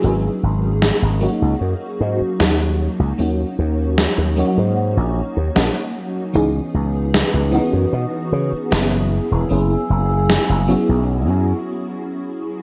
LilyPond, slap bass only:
\new Staff \with { instrumentName = "Slap bass" } { \clef bass \time 4/4 \key gis \minor \tempo 4 = 76 gis,,16 r16 gis,,8 r16 gis,,16 r16 cis,16 fis,16 r16 gis,16 r16 dis,8 r16 cis,16 | dis,16 r16 dis,8 r16 dis,16 r16 gis,8 ais,,16 r16 dis,16 ais,,16 r8. | cis,16 r16 cis,8 r16 cis,16 r16 fis,16 b,16 r16 cis16 r16 fis,,8 r16 e,,16 | fis,,16 r16 fis,,8 r16 fis,,16 r16 b,,8 fis,16 r4. | }